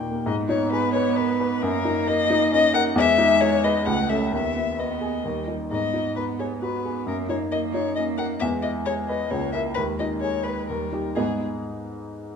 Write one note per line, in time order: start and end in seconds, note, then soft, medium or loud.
0.00 0.22 D#2 medium
0.00 0.20 A#2 soft
0.00 0.11 A#3 soft
0.00 0.29 D#4 soft
0.00 0.29 G4 soft
0.00 0.29 A#4 soft
0.00 0.26 G5 medium
0.11 0.26 A#3 soft
0.26 1.58 G#2 medium
0.26 1.64 B3 medium
0.26 0.34 D#5 loud
0.49 0.85 D#4 medium
0.49 0.71 C#5 medium
0.72 1.08 G#4 medium
0.72 0.93 B4 loud
0.93 1.31 B4 medium
0.93 1.18 C#5 loud
1.16 1.40 A#4 soft
1.16 1.63 B4 medium
1.40 1.62 B4 medium
1.62 2.92 F#2 medium
1.62 2.96 A#3 medium
1.62 2.09 A#4 loud
1.85 2.20 D#4 medium
2.07 2.43 A#4 medium
2.07 2.52 D#5 loud
2.30 2.65 D#4 medium
2.52 2.74 C#4 medium
2.52 2.74 D#5 loud
2.74 2.96 A#4 medium
2.74 2.82 F#5 loud
2.96 3.83 E2 loud
2.96 3.88 G#3 medium
2.96 3.42 E5 loud
3.18 3.54 D#4 medium
3.41 3.77 G#4 medium
3.41 3.65 C#5 loud
3.64 3.87 B4 medium
3.64 3.87 D#5 loud
3.86 4.31 C#2 medium
3.86 4.35 A3 medium
3.86 4.11 F#5 loud
4.09 4.30 C#4 soft
4.09 4.30 A4 medium
4.09 4.32 E5 medium
4.32 5.22 D#2 medium
4.32 4.79 B3 medium
4.32 4.81 E5 medium
4.55 4.92 B3 soft
4.79 5.26 B3 medium
4.79 5.15 B4 soft
4.79 5.48 D#5 medium
5.01 5.24 G#4 medium
5.25 5.70 D#2 medium
5.25 5.51 G3 medium
5.48 5.68 D#4 soft
5.48 5.69 A#4 soft
5.71 7.02 G#2 medium
5.71 6.14 B3 medium
5.71 6.13 D#5 medium
5.94 6.30 D#4 soft
6.16 6.61 B3 medium
6.16 6.24 B4 medium
6.16 6.53 B4 soft
6.39 6.75 G#4 medium
6.39 6.47 C#5 medium
6.61 7.09 B3 medium
6.61 6.84 F#4 soft
6.61 7.05 B4 medium
6.85 7.07 G#4 soft
7.06 8.37 F#2 medium
7.06 7.52 A#3 medium
7.06 7.16 A#4 medium
7.29 7.65 D#4 soft
7.29 7.37 C#5 medium
7.51 7.96 A#3 medium
7.51 7.87 A#4 soft
7.51 7.59 D#5 medium
7.73 8.10 D#4 medium
7.73 7.95 C#5 medium
7.96 8.40 A#3 medium
7.96 8.19 C#4 soft
7.96 8.04 D#5 medium
8.18 8.41 A#4 medium
8.18 8.26 F#5 medium
8.40 9.29 E2 medium
8.40 9.29 G#3 medium
8.40 8.48 E5 loud
8.62 8.99 E4 medium
8.62 8.70 D#5 medium
8.86 9.22 G#4 medium
8.86 8.94 C#5 loud
9.08 9.31 B4 medium
9.08 9.32 D#5 medium
9.31 9.75 C#2 medium
9.31 9.79 A#3 medium
9.31 9.52 C#5 medium
9.52 9.74 E4 soft
9.52 9.74 A#4 medium
9.52 9.60 E5 medium
9.74 10.66 D#2 medium
9.74 10.70 G#3 medium
9.74 9.82 B4 loud
9.99 10.36 D#4 soft
9.99 10.07 D#5 medium
10.21 10.60 G#4 soft
10.21 10.45 C#5 medium
10.43 10.67 B4 medium
10.43 10.69 B4 soft
10.67 11.15 D#2 medium
10.67 10.95 G3 medium
10.67 11.14 A#4 medium
10.92 11.14 D#4 soft
10.92 11.14 G4 soft
11.15 11.43 G#2 medium
11.15 11.43 G#3 soft
11.15 11.42 B3 medium
11.15 11.43 B3 medium
11.15 11.43 D#4 soft
11.15 11.42 G#4 medium
11.15 11.43 G#4 medium
11.15 11.43 D#5 medium